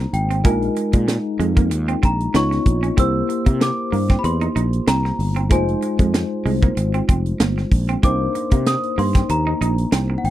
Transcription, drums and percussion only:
0.13 closed hi-hat
0.31 closed hi-hat
0.44 kick, closed hi-hat
0.62 closed hi-hat
0.76 closed hi-hat
0.93 kick, closed hi-hat
1.08 snare, closed hi-hat
1.40 closed hi-hat
1.57 kick, closed hi-hat
1.71 closed hi-hat
1.88 closed hi-hat
2.03 kick, closed hi-hat
2.20 closed hi-hat
2.35 snare, closed hi-hat
2.52 snare, closed hi-hat
2.66 kick, closed hi-hat
2.83 closed hi-hat
2.98 kick, closed hi-hat
3.30 closed hi-hat
3.46 kick, closed hi-hat
3.61 snare, closed hi-hat
3.93 open hi-hat
4.10 kick, snare, closed hi-hat
4.24 closed hi-hat
4.41 closed hi-hat
4.56 closed hi-hat
4.73 closed hi-hat
4.88 snare, closed hi-hat
5.05 snare
5.20 open hi-hat
5.36 closed hi-hat
5.51 kick, closed hi-hat
5.68 closed hi-hat
5.82 closed hi-hat
5.99 kick, closed hi-hat
6.14 snare, closed hi-hat
6.46 open hi-hat
6.63 kick, closed hi-hat
6.77 closed hi-hat
6.94 closed hi-hat
7.09 kick, closed hi-hat
7.26 closed hi-hat
7.40 snare, closed hi-hat
7.58 snare
7.72 kick, open hi-hat
7.89 closed hi-hat
8.03 kick, closed hi-hat
8.35 closed hi-hat
8.51 kick, closed hi-hat
8.66 snare, closed hi-hat
8.83 closed hi-hat
8.99 open hi-hat
9.15 kick, snare, closed hi-hat
9.29 closed hi-hat
9.62 closed hi-hat
9.78 closed hi-hat
9.92 snare, closed hi-hat
10.24 open hi-hat

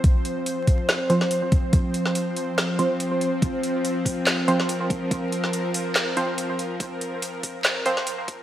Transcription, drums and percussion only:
0.04 kick, closed hi-hat
0.25 closed hi-hat
0.46 closed hi-hat
0.67 kick, closed hi-hat
0.89 snare, closed hi-hat
1.10 closed hi-hat
1.21 snare
1.31 closed hi-hat
1.52 kick, closed hi-hat
1.73 kick, closed hi-hat
1.94 closed hi-hat
2.06 snare
2.15 closed hi-hat
2.37 closed hi-hat
2.58 snare, closed hi-hat
2.79 closed hi-hat
3.00 closed hi-hat
3.21 closed hi-hat
3.42 kick, closed hi-hat
3.64 closed hi-hat
3.85 closed hi-hat
4.06 kick, open hi-hat
4.27 snare, clap, closed hi-hat
4.48 closed hi-hat
4.60 snare
4.69 closed hi-hat
4.90 kick, closed hi-hat
5.11 kick, closed hi-hat
5.32 closed hi-hat
5.44 snare
5.53 closed hi-hat
5.74 open hi-hat
5.96 snare, clap, closed hi-hat
6.17 closed hi-hat
6.38 closed hi-hat
6.59 closed hi-hat
6.80 kick, closed hi-hat
7.01 closed hi-hat
7.22 closed hi-hat
7.43 kick, open hi-hat
7.65 snare, clap, closed hi-hat
7.86 closed hi-hat
7.97 snare
8.07 closed hi-hat
8.28 kick, closed hi-hat

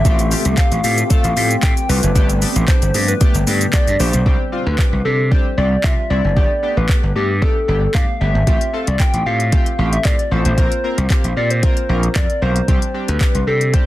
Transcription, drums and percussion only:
0.05 kick, closed hi-hat, shaker
0.19 closed hi-hat, shaker
0.31 open hi-hat, shaker
0.45 closed hi-hat, shaker
0.58 kick, clap, closed hi-hat, shaker
0.72 closed hi-hat, shaker
0.84 open hi-hat, shaker
0.98 closed hi-hat, shaker
1.10 kick, closed hi-hat, shaker
1.24 closed hi-hat, shaker
1.37 open hi-hat, shaker
1.51 closed hi-hat, shaker
1.63 kick, clap, closed hi-hat, shaker
1.77 closed hi-hat, shaker
1.89 open hi-hat, shaker
2.03 closed hi-hat, shaker
2.16 kick, closed hi-hat, shaker
2.29 closed hi-hat, shaker
2.42 open hi-hat, shaker
2.56 closed hi-hat, shaker
2.68 kick, clap, closed hi-hat, shaker
2.82 closed hi-hat, shaker
2.94 open hi-hat, shaker
3.08 closed hi-hat, shaker
3.21 kick, closed hi-hat, shaker
3.35 closed hi-hat, shaker
3.47 open hi-hat, shaker
3.61 closed hi-hat, shaker
3.73 kick, clap, closed hi-hat, shaker
3.88 closed hi-hat, shaker
4.00 open hi-hat, shaker
4.13 closed hi-hat, shaker
4.26 kick
4.79 kick, clap
5.32 kick
5.84 kick, clap
6.37 kick
6.89 kick, clap
7.42 kick
7.95 kick, clap
8.47 kick, closed hi-hat
8.61 closed hi-hat
8.87 closed hi-hat
9.00 kick, clap, closed hi-hat
9.14 closed hi-hat
9.40 closed hi-hat
9.52 kick, closed hi-hat
9.66 closed hi-hat
9.93 closed hi-hat
10.05 kick, clap, closed hi-hat
10.19 closed hi-hat
10.45 closed hi-hat
10.58 kick, closed hi-hat
10.72 closed hi-hat
10.98 closed hi-hat
11.10 kick, clap, closed hi-hat
11.24 closed hi-hat
11.50 closed hi-hat
11.63 kick, closed hi-hat
11.77 closed hi-hat
12.03 closed hi-hat
12.15 kick, clap, closed hi-hat
12.30 closed hi-hat
12.56 closed hi-hat
12.68 kick, closed hi-hat
12.82 closed hi-hat
13.08 closed hi-hat
13.21 kick, clap, closed hi-hat
13.35 closed hi-hat
13.61 closed hi-hat
13.74 kick, closed hi-hat

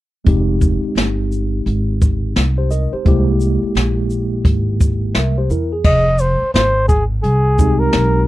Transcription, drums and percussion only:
0.26 kick, closed hi-hat
0.61 kick, shaker
0.96 snare, closed hi-hat
1.32 shaker
1.67 closed hi-hat
2.02 kick, shaker
2.36 snare, closed hi-hat
2.71 closed hi-hat, shaker
3.05 kick, closed hi-hat
3.40 shaker
3.75 snare, closed hi-hat
4.10 shaker
4.45 kick, closed hi-hat
4.81 kick, shaker
5.14 snare, closed hi-hat
5.50 shaker
5.84 kick, crash
6.18 closed hi-hat, shaker
6.54 snare, closed hi-hat
6.89 kick, shaker
7.24 closed hi-hat
7.59 kick, shaker
7.93 snare, closed hi-hat

